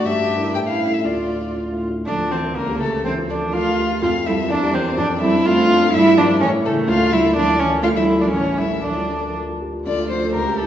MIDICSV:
0, 0, Header, 1, 5, 480
1, 0, Start_track
1, 0, Key_signature, -1, "minor"
1, 0, Tempo, 500000
1, 45, Time_signature, 2, 2, 24, 8
1, 2927, Tempo, 478851
1, 7727, Tempo, 500417
1, 10441, End_track
2, 0, Start_track
2, 0, Title_t, "Violin"
2, 0, Program_c, 0, 40
2, 51, Note_on_c, 0, 76, 82
2, 515, Note_off_c, 0, 76, 0
2, 525, Note_on_c, 0, 79, 77
2, 570, Note_off_c, 0, 79, 0
2, 650, Note_on_c, 0, 77, 67
2, 896, Note_on_c, 0, 76, 57
2, 910, Note_off_c, 0, 77, 0
2, 1010, Note_on_c, 0, 74, 55
2, 1024, Note_off_c, 0, 76, 0
2, 1498, Note_off_c, 0, 74, 0
2, 1993, Note_on_c, 0, 74, 60
2, 2070, Note_off_c, 0, 74, 0
2, 2223, Note_on_c, 0, 72, 60
2, 2300, Note_off_c, 0, 72, 0
2, 2461, Note_on_c, 0, 70, 62
2, 2685, Note_off_c, 0, 70, 0
2, 2691, Note_on_c, 0, 69, 58
2, 2922, Note_off_c, 0, 69, 0
2, 2933, Note_on_c, 0, 72, 64
2, 3013, Note_off_c, 0, 72, 0
2, 3177, Note_on_c, 0, 74, 51
2, 3257, Note_off_c, 0, 74, 0
2, 3422, Note_on_c, 0, 77, 71
2, 3892, Note_off_c, 0, 77, 0
2, 3907, Note_on_c, 0, 77, 76
2, 4140, Note_on_c, 0, 76, 73
2, 4155, Note_off_c, 0, 77, 0
2, 4389, Note_on_c, 0, 74, 81
2, 4404, Note_off_c, 0, 76, 0
2, 4623, Note_on_c, 0, 72, 71
2, 4638, Note_off_c, 0, 74, 0
2, 4863, Note_on_c, 0, 74, 77
2, 4878, Note_off_c, 0, 72, 0
2, 5088, Note_off_c, 0, 74, 0
2, 5094, Note_on_c, 0, 76, 78
2, 5347, Note_on_c, 0, 77, 86
2, 5362, Note_off_c, 0, 76, 0
2, 5821, Note_on_c, 0, 76, 95
2, 5836, Note_off_c, 0, 77, 0
2, 6060, Note_on_c, 0, 74, 75
2, 6075, Note_off_c, 0, 76, 0
2, 6294, Note_off_c, 0, 74, 0
2, 6307, Note_on_c, 0, 73, 84
2, 6387, Note_off_c, 0, 73, 0
2, 6543, Note_on_c, 0, 69, 70
2, 6623, Note_off_c, 0, 69, 0
2, 6780, Note_on_c, 0, 77, 83
2, 7017, Note_on_c, 0, 76, 76
2, 7032, Note_off_c, 0, 77, 0
2, 7246, Note_off_c, 0, 76, 0
2, 7252, Note_on_c, 0, 74, 81
2, 7475, Note_off_c, 0, 74, 0
2, 7481, Note_on_c, 0, 73, 64
2, 7561, Note_off_c, 0, 73, 0
2, 7723, Note_on_c, 0, 77, 84
2, 7771, Note_off_c, 0, 77, 0
2, 7848, Note_on_c, 0, 76, 60
2, 7925, Note_off_c, 0, 76, 0
2, 8076, Note_on_c, 0, 74, 62
2, 8195, Note_off_c, 0, 74, 0
2, 8203, Note_on_c, 0, 73, 63
2, 8439, Note_off_c, 0, 73, 0
2, 8447, Note_on_c, 0, 76, 60
2, 8690, Note_on_c, 0, 74, 58
2, 8705, Note_off_c, 0, 76, 0
2, 9186, Note_off_c, 0, 74, 0
2, 9673, Note_on_c, 0, 74, 80
2, 9891, Note_off_c, 0, 74, 0
2, 9901, Note_on_c, 0, 72, 73
2, 10124, Note_off_c, 0, 72, 0
2, 10130, Note_on_c, 0, 70, 69
2, 10358, Note_on_c, 0, 69, 68
2, 10372, Note_off_c, 0, 70, 0
2, 10441, Note_off_c, 0, 69, 0
2, 10441, End_track
3, 0, Start_track
3, 0, Title_t, "Grand piano"
3, 0, Program_c, 1, 0
3, 0, Control_c, 1, 64, 127
3, 46, Note_on_c, 1, 43, 57
3, 63, Control_c, 1, 64, 0
3, 202, Note_on_c, 1, 62, 48
3, 228, Control_c, 1, 64, 127
3, 358, Note_on_c, 1, 64, 45
3, 360, Note_on_c, 1, 70, 46
3, 450, Note_off_c, 1, 62, 0
3, 498, Note_off_c, 1, 64, 0
3, 499, Note_off_c, 1, 43, 0
3, 499, Note_off_c, 1, 70, 0
3, 518, Note_on_c, 1, 45, 57
3, 530, Control_c, 1, 64, 0
3, 668, Control_c, 1, 64, 127
3, 672, Note_on_c, 1, 61, 41
3, 838, Note_on_c, 1, 64, 34
3, 841, Note_on_c, 1, 69, 38
3, 931, Note_off_c, 1, 61, 0
3, 983, Note_off_c, 1, 64, 0
3, 985, Note_off_c, 1, 45, 0
3, 985, Note_off_c, 1, 69, 0
3, 1001, Note_on_c, 1, 38, 42
3, 1015, Control_c, 1, 64, 0
3, 1170, Note_on_c, 1, 45, 32
3, 1183, Control_c, 1, 64, 127
3, 1327, Note_on_c, 1, 65, 36
3, 1429, Note_off_c, 1, 45, 0
3, 1492, Note_on_c, 1, 62, 33
3, 1590, Note_off_c, 1, 65, 0
3, 1657, Note_on_c, 1, 45, 35
3, 1756, Note_off_c, 1, 62, 0
3, 1823, Note_on_c, 1, 65, 35
3, 1919, Note_off_c, 1, 45, 0
3, 1954, Note_off_c, 1, 38, 0
3, 1983, Note_off_c, 1, 65, 0
3, 1986, Note_on_c, 1, 38, 50
3, 1999, Control_c, 1, 64, 0
3, 2096, Note_on_c, 1, 65, 39
3, 2142, Control_c, 1, 64, 127
3, 2287, Note_off_c, 1, 65, 0
3, 2343, Note_on_c, 1, 70, 37
3, 2444, Note_off_c, 1, 38, 0
3, 2458, Note_off_c, 1, 70, 0
3, 2459, Note_on_c, 1, 37, 53
3, 2472, Control_c, 1, 64, 0
3, 2578, Note_on_c, 1, 67, 42
3, 2626, Control_c, 1, 64, 127
3, 2699, Note_on_c, 1, 69, 45
3, 2764, Note_off_c, 1, 67, 0
3, 2812, Note_on_c, 1, 70, 40
3, 2884, Note_off_c, 1, 69, 0
3, 2915, Note_off_c, 1, 37, 0
3, 2929, Note_off_c, 1, 70, 0
3, 2930, Note_on_c, 1, 38, 49
3, 2945, Control_c, 1, 64, 0
3, 3052, Note_on_c, 1, 65, 41
3, 3084, Control_c, 1, 64, 127
3, 3178, Note_on_c, 1, 69, 47
3, 3247, Note_off_c, 1, 65, 0
3, 3300, Note_on_c, 1, 70, 42
3, 3370, Note_off_c, 1, 69, 0
3, 3419, Note_off_c, 1, 70, 0
3, 3425, Note_on_c, 1, 69, 47
3, 3542, Note_on_c, 1, 65, 41
3, 3614, Note_off_c, 1, 69, 0
3, 3659, Note_on_c, 1, 67, 41
3, 3733, Note_off_c, 1, 65, 0
3, 3779, Note_off_c, 1, 67, 0
3, 3781, Note_on_c, 1, 65, 44
3, 3871, Note_off_c, 1, 38, 0
3, 3900, Note_off_c, 1, 65, 0
3, 3904, Note_on_c, 1, 41, 59
3, 3917, Control_c, 1, 64, 0
3, 4025, Note_on_c, 1, 65, 46
3, 4093, Control_c, 1, 64, 127
3, 4142, Note_on_c, 1, 69, 53
3, 4213, Note_off_c, 1, 65, 0
3, 4258, Note_on_c, 1, 70, 46
3, 4330, Note_off_c, 1, 69, 0
3, 4364, Note_off_c, 1, 41, 0
3, 4376, Note_off_c, 1, 70, 0
3, 4381, Note_on_c, 1, 40, 63
3, 4396, Control_c, 1, 64, 0
3, 4501, Note_on_c, 1, 67, 52
3, 4539, Control_c, 1, 64, 127
3, 4621, Note_on_c, 1, 70, 49
3, 4689, Note_off_c, 1, 67, 0
3, 4740, Note_on_c, 1, 72, 43
3, 4809, Note_off_c, 1, 70, 0
3, 4842, Note_off_c, 1, 40, 0
3, 4855, Note_on_c, 1, 41, 66
3, 4856, Note_off_c, 1, 72, 0
3, 4873, Control_c, 1, 64, 0
3, 4980, Note_on_c, 1, 69, 51
3, 5003, Control_c, 1, 64, 127
3, 5099, Note_on_c, 1, 60, 61
3, 5168, Note_off_c, 1, 69, 0
3, 5219, Note_on_c, 1, 62, 50
3, 5288, Note_off_c, 1, 60, 0
3, 5336, Note_off_c, 1, 62, 0
3, 5342, Note_on_c, 1, 69, 56
3, 5464, Note_on_c, 1, 60, 53
3, 5530, Note_off_c, 1, 69, 0
3, 5583, Note_on_c, 1, 62, 48
3, 5651, Note_off_c, 1, 60, 0
3, 5698, Note_off_c, 1, 62, 0
3, 5708, Note_on_c, 1, 69, 57
3, 5785, Note_off_c, 1, 41, 0
3, 5818, Note_on_c, 1, 43, 63
3, 5820, Note_off_c, 1, 69, 0
3, 5833, Control_c, 1, 64, 0
3, 5935, Note_on_c, 1, 67, 55
3, 6014, Control_c, 1, 64, 127
3, 6051, Note_on_c, 1, 70, 60
3, 6124, Note_off_c, 1, 67, 0
3, 6169, Note_on_c, 1, 72, 49
3, 6242, Note_off_c, 1, 70, 0
3, 6278, Note_off_c, 1, 43, 0
3, 6286, Note_on_c, 1, 45, 65
3, 6289, Note_off_c, 1, 72, 0
3, 6310, Control_c, 1, 64, 0
3, 6405, Note_on_c, 1, 64, 59
3, 6455, Control_c, 1, 64, 127
3, 6527, Note_on_c, 1, 69, 56
3, 6598, Note_off_c, 1, 64, 0
3, 6647, Note_on_c, 1, 70, 52
3, 6719, Note_off_c, 1, 69, 0
3, 6752, Note_off_c, 1, 45, 0
3, 6764, Note_on_c, 1, 38, 66
3, 6767, Note_off_c, 1, 70, 0
3, 6787, Control_c, 1, 64, 0
3, 6890, Note_on_c, 1, 65, 55
3, 6943, Control_c, 1, 64, 127
3, 7008, Note_on_c, 1, 69, 54
3, 7081, Note_off_c, 1, 65, 0
3, 7125, Note_on_c, 1, 70, 46
3, 7200, Note_off_c, 1, 69, 0
3, 7231, Note_off_c, 1, 38, 0
3, 7246, Note_off_c, 1, 70, 0
3, 7251, Note_on_c, 1, 38, 64
3, 7266, Control_c, 1, 64, 0
3, 7368, Note_on_c, 1, 64, 50
3, 7396, Control_c, 1, 64, 127
3, 7489, Note_on_c, 1, 69, 47
3, 7560, Note_off_c, 1, 64, 0
3, 7606, Note_on_c, 1, 70, 47
3, 7681, Note_off_c, 1, 69, 0
3, 7704, Note_off_c, 1, 38, 0
3, 7719, Note_on_c, 1, 38, 62
3, 7728, Note_off_c, 1, 70, 0
3, 7749, Control_c, 1, 64, 0
3, 7844, Note_on_c, 1, 65, 43
3, 7932, Control_c, 1, 64, 127
3, 7957, Note_on_c, 1, 69, 51
3, 8032, Note_off_c, 1, 65, 0
3, 8080, Note_on_c, 1, 70, 43
3, 8149, Note_off_c, 1, 69, 0
3, 8181, Note_off_c, 1, 38, 0
3, 8200, Note_off_c, 1, 70, 0
3, 8202, Note_on_c, 1, 33, 54
3, 8217, Control_c, 1, 64, 0
3, 8324, Note_on_c, 1, 64, 43
3, 8382, Control_c, 1, 64, 127
3, 8440, Note_on_c, 1, 69, 43
3, 8518, Note_off_c, 1, 64, 0
3, 8561, Note_on_c, 1, 70, 36
3, 8639, Note_off_c, 1, 69, 0
3, 8677, Note_off_c, 1, 33, 0
3, 8684, Note_on_c, 1, 38, 42
3, 8688, Note_off_c, 1, 70, 0
3, 8710, Control_c, 1, 64, 0
3, 8814, Note_on_c, 1, 65, 35
3, 8899, Control_c, 1, 64, 127
3, 8934, Note_on_c, 1, 69, 38
3, 9013, Note_off_c, 1, 65, 0
3, 9064, Note_on_c, 1, 70, 34
3, 9134, Note_off_c, 1, 69, 0
3, 9184, Note_on_c, 1, 69, 40
3, 9186, Note_off_c, 1, 70, 0
3, 9304, Note_on_c, 1, 65, 36
3, 9381, Note_off_c, 1, 69, 0
3, 9427, Note_on_c, 1, 67, 29
3, 9501, Note_off_c, 1, 65, 0
3, 9546, Note_on_c, 1, 65, 35
3, 9550, Note_off_c, 1, 67, 0
3, 9638, Note_off_c, 1, 38, 0
3, 9668, Note_off_c, 1, 65, 0
3, 9670, Note_on_c, 1, 38, 55
3, 9690, Control_c, 1, 64, 0
3, 9790, Note_on_c, 1, 65, 47
3, 9832, Control_c, 1, 64, 127
3, 9909, Note_on_c, 1, 53, 49
3, 9977, Note_off_c, 1, 65, 0
3, 10025, Note_on_c, 1, 69, 50
3, 10095, Note_off_c, 1, 53, 0
3, 10126, Note_off_c, 1, 38, 0
3, 10138, Note_on_c, 1, 37, 59
3, 10141, Note_off_c, 1, 69, 0
3, 10157, Control_c, 1, 64, 0
3, 10257, Note_on_c, 1, 67, 47
3, 10300, Control_c, 1, 64, 127
3, 10379, Note_on_c, 1, 64, 49
3, 10441, Note_off_c, 1, 37, 0
3, 10441, Note_off_c, 1, 64, 0
3, 10441, Note_off_c, 1, 67, 0
3, 10441, End_track
4, 0, Start_track
4, 0, Title_t, "Viola"
4, 0, Program_c, 2, 41
4, 49, Note_on_c, 2, 62, 57
4, 520, Note_on_c, 2, 64, 51
4, 535, Note_off_c, 2, 62, 0
4, 993, Note_off_c, 2, 64, 0
4, 999, Note_on_c, 2, 65, 43
4, 1768, Note_off_c, 2, 65, 0
4, 1982, Note_on_c, 2, 62, 76
4, 2221, Note_on_c, 2, 60, 66
4, 2235, Note_off_c, 2, 62, 0
4, 2456, Note_on_c, 2, 58, 69
4, 2470, Note_off_c, 2, 60, 0
4, 2686, Note_on_c, 2, 57, 63
4, 2701, Note_off_c, 2, 58, 0
4, 2917, Note_off_c, 2, 57, 0
4, 2923, Note_on_c, 2, 60, 80
4, 3003, Note_off_c, 2, 60, 0
4, 3167, Note_on_c, 2, 62, 66
4, 3411, Note_on_c, 2, 65, 83
4, 3426, Note_off_c, 2, 62, 0
4, 3896, Note_off_c, 2, 65, 0
4, 3905, Note_on_c, 2, 65, 87
4, 3985, Note_off_c, 2, 65, 0
4, 4148, Note_on_c, 2, 64, 71
4, 4228, Note_off_c, 2, 64, 0
4, 4380, Note_on_c, 2, 62, 92
4, 4625, Note_on_c, 2, 60, 81
4, 4640, Note_off_c, 2, 62, 0
4, 4859, Note_off_c, 2, 60, 0
4, 4868, Note_on_c, 2, 62, 91
4, 4949, Note_off_c, 2, 62, 0
4, 5100, Note_on_c, 2, 64, 92
4, 5340, Note_on_c, 2, 65, 107
4, 5355, Note_off_c, 2, 64, 0
4, 5814, Note_off_c, 2, 65, 0
4, 5820, Note_on_c, 2, 64, 111
4, 6061, Note_on_c, 2, 62, 86
4, 6076, Note_off_c, 2, 64, 0
4, 6284, Note_off_c, 2, 62, 0
4, 6290, Note_on_c, 2, 61, 91
4, 6370, Note_off_c, 2, 61, 0
4, 6532, Note_on_c, 2, 57, 82
4, 6773, Note_on_c, 2, 65, 91
4, 6788, Note_off_c, 2, 57, 0
4, 7015, Note_on_c, 2, 64, 90
4, 7030, Note_off_c, 2, 65, 0
4, 7251, Note_off_c, 2, 64, 0
4, 7256, Note_on_c, 2, 62, 96
4, 7486, Note_on_c, 2, 61, 86
4, 7501, Note_off_c, 2, 62, 0
4, 7715, Note_off_c, 2, 61, 0
4, 7721, Note_on_c, 2, 65, 93
4, 7769, Note_off_c, 2, 65, 0
4, 7837, Note_on_c, 2, 64, 84
4, 8083, Note_on_c, 2, 62, 69
4, 8097, Note_off_c, 2, 64, 0
4, 8174, Note_off_c, 2, 62, 0
4, 8179, Note_on_c, 2, 61, 75
4, 8433, Note_on_c, 2, 64, 64
4, 8448, Note_off_c, 2, 61, 0
4, 8672, Note_off_c, 2, 64, 0
4, 8678, Note_on_c, 2, 62, 60
4, 9169, Note_off_c, 2, 62, 0
4, 9668, Note_on_c, 2, 65, 65
4, 10106, Note_off_c, 2, 65, 0
4, 10133, Note_on_c, 2, 67, 68
4, 10441, Note_off_c, 2, 67, 0
4, 10441, End_track
5, 0, Start_track
5, 0, Title_t, "Cello"
5, 0, Program_c, 3, 42
5, 45, Note_on_c, 3, 67, 68
5, 503, Note_off_c, 3, 67, 0
5, 509, Note_on_c, 3, 64, 56
5, 985, Note_off_c, 3, 64, 0
5, 991, Note_on_c, 3, 65, 50
5, 1721, Note_off_c, 3, 65, 0
5, 1974, Note_on_c, 3, 53, 56
5, 2212, Note_on_c, 3, 52, 60
5, 2227, Note_off_c, 3, 53, 0
5, 2443, Note_on_c, 3, 50, 54
5, 2458, Note_off_c, 3, 52, 0
5, 2672, Note_on_c, 3, 49, 59
5, 2687, Note_off_c, 3, 50, 0
5, 2913, Note_off_c, 3, 49, 0
5, 2919, Note_on_c, 3, 52, 69
5, 3169, Note_on_c, 3, 53, 58
5, 3184, Note_off_c, 3, 52, 0
5, 3413, Note_on_c, 3, 57, 64
5, 3428, Note_off_c, 3, 53, 0
5, 3898, Note_off_c, 3, 57, 0
5, 3903, Note_on_c, 3, 57, 70
5, 3984, Note_off_c, 3, 57, 0
5, 4140, Note_on_c, 3, 55, 76
5, 4378, Note_on_c, 3, 53, 68
5, 4393, Note_off_c, 3, 55, 0
5, 4612, Note_on_c, 3, 52, 74
5, 4627, Note_off_c, 3, 53, 0
5, 4854, Note_on_c, 3, 53, 81
5, 4869, Note_off_c, 3, 52, 0
5, 5086, Note_off_c, 3, 53, 0
5, 5092, Note_on_c, 3, 55, 77
5, 5327, Note_off_c, 3, 55, 0
5, 5333, Note_on_c, 3, 57, 75
5, 5803, Note_off_c, 3, 57, 0
5, 5810, Note_on_c, 3, 55, 92
5, 6045, Note_off_c, 3, 55, 0
5, 6052, Note_on_c, 3, 53, 71
5, 6132, Note_off_c, 3, 53, 0
5, 6295, Note_on_c, 3, 52, 72
5, 6375, Note_off_c, 3, 52, 0
5, 6529, Note_on_c, 3, 49, 74
5, 6760, Note_on_c, 3, 57, 85
5, 6775, Note_off_c, 3, 49, 0
5, 7004, Note_off_c, 3, 57, 0
5, 7010, Note_on_c, 3, 55, 74
5, 7090, Note_off_c, 3, 55, 0
5, 7253, Note_on_c, 3, 53, 74
5, 7333, Note_off_c, 3, 53, 0
5, 7490, Note_on_c, 3, 52, 73
5, 7713, Note_off_c, 3, 52, 0
5, 7719, Note_on_c, 3, 57, 82
5, 7836, Note_off_c, 3, 57, 0
5, 7842, Note_on_c, 3, 55, 72
5, 8074, Note_off_c, 3, 55, 0
5, 8082, Note_on_c, 3, 53, 60
5, 8194, Note_off_c, 3, 53, 0
5, 8200, Note_on_c, 3, 52, 60
5, 8442, Note_on_c, 3, 55, 62
5, 8457, Note_off_c, 3, 52, 0
5, 8690, Note_off_c, 3, 55, 0
5, 8698, Note_on_c, 3, 53, 53
5, 9180, Note_off_c, 3, 53, 0
5, 9667, Note_on_c, 3, 57, 58
5, 10441, Note_off_c, 3, 57, 0
5, 10441, End_track
0, 0, End_of_file